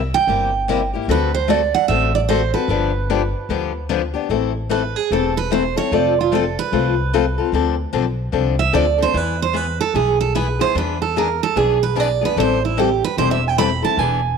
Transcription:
Already playing: C2
0.14 G5
0.27 G1 C3 G3 A#3 E4 G4
0.68 C3 G3 A#3 E4 G4
0.93 A#3 E4 G4
1.08 D2 D3 A3 C4 F#4 A4 B4
1.34 C5
1.48 D3 A3 C4 F#4 A4 D5
1.74 F#5
1.88 A1 D3 A3 C4 F#4 A4 E5
2.15 D5
2.29 D3 A3 C4 F#4 A4 C5
2.54 C4 F#4 A4 B4
2.68 G1 D3 F3 B3 D4 G4
3.10 D3 F3 B3 D4 G4
3.49 D2 D3 F3 B3 D4 G4
3.89 D3 F3 B3 D4 G4
4.14 B3 D4 G4
4.29 A1 E3 A3 C4 E4 A4
4.69 E3 A3 C4 E4 A4 B4
4.96 G#4
5.11 E1 E3 A3 C4 E4 A4
5.37 B4
5.51 E3 A3 C4 E4 A4 C5
5.76 C4 E4 A4 C#5
5.92 F1 F3 A3 C4 F4 A4 D5
6.21 F4
6.32 F3 A3 C4 F4 A4
6.59 B4
6.72 C2 F3 A3 C4 F4 A4
7.13 F3 A3 C4 F4 A4
7.38 C4 F4 A4
7.52 D2 D3 F3 C4 D4 A4
7.93 B1 D3 F3 C4 D4 A4
8.32 C2 D3 F3 C4 D4 A4
8.59 E5
8.73 D2 D3 F3 C4 D4 A4 D5
8.98 C4 D4 A4
9.03 C5
9.14 E2 E3 B3 E4 G#4 B4
9.42 C5
9.53 E3 B3 E4 G#4 B4
9.81 A4
9.94 B1 E3 B3 E4 G#4
10.21 A4
10.35 E3 B3 E4 G#4 B4
10.59 B3 E4 G#4 C5
10.75 E2 E3 B3 D4 G#4 B4
11.02 A4
11.16 E3 B3 D4 G#4 A#4
11.43 A4
11.56 B1 E3 B3 D4 G#4
11.83 B4
11.96 E3 B3 D4 G#4
12.00 D5
12.21 B3 D4 G#4 B4
12.37 A1 E3 G3 C4 E4 A4 C5
12.65 E4
12.77 E3 G3 C4 E4 G4 A4
13.04 B4
13.17 E1 E3 G3 C4 E4 A4 C5
13.31 E5
13.48 G5
13.58 E3 G3 C4 E4 A4 B5
13.82 C4 E4 A4 A5
13.97 E1 E3 B3 D4 G#4 G#5

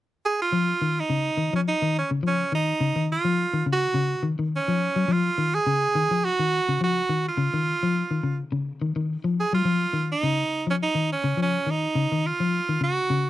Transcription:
0.25 G#4
0.42 F4
0.52 F3
0.82 D#3
1.00 D#4
1.10 C#3
1.37 D#3
1.53 F3 C#4
1.68 D#4
1.82 D#3
1.99 C#4
2.11 C#3
2.23 F3
2.27 C#4
2.52 D#3 D#4
2.81 C#3
2.96 D#3
3.12 F4
3.25 F3
3.53 D#3
3.66 C#3
3.73 F#4
3.94 C#3
4.23 D#3
4.39 D#3
4.56 C#4
4.68 F3
4.96 F#3
5.08 F3
5.12 F4
5.38 D#3
5.55 G#4
5.67 C#3
5.95 D#3
6.11 F3
6.25 F#4
6.39 D#3
6.69 C#3
6.81 F3 F#4
7.09 D#3
7.28 F4
7.38 C#3
7.54 D#3
7.83 F3
8.11 D#3
8.23 C#3
8.52 C#3
8.82 D#3
8.96 D#3
9.24 F3
9.40 G#4
9.53 F#3 F4
9.65 F3
9.93 D#3
10.12 D#4
10.23 C#3
10.67 F3 C#4
10.83 D#4
10.95 D#3
11.13 C#4
11.24 C#3
11.37 F3
11.42 C#4
11.67 D#3
11.71 D#4
11.95 C#3
12.12 D#3
12.27 F4
12.40 F3
12.69 D#3
12.81 C#3 F#4
13.10 C#3

